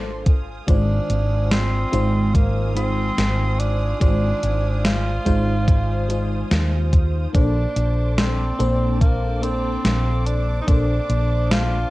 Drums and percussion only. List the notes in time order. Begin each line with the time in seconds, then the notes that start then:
0.26 kick, closed hi-hat
0.68 kick, closed hi-hat
1.10 closed hi-hat
1.51 snare, closed hi-hat
1.93 closed hi-hat
2.35 kick, closed hi-hat
2.77 closed hi-hat
3.18 snare, closed hi-hat
3.60 closed hi-hat
4.01 kick, closed hi-hat
4.43 closed hi-hat
4.85 snare, closed hi-hat
5.26 kick, closed hi-hat
5.68 kick, closed hi-hat
6.10 closed hi-hat
6.51 snare, closed hi-hat
6.93 kick, closed hi-hat
7.35 kick, closed hi-hat
7.76 closed hi-hat
8.18 snare, closed hi-hat
8.60 closed hi-hat
9.01 kick, closed hi-hat
9.43 closed hi-hat
9.85 snare, closed hi-hat
10.26 closed hi-hat
10.68 kick, closed hi-hat
11.10 closed hi-hat
11.51 snare, closed hi-hat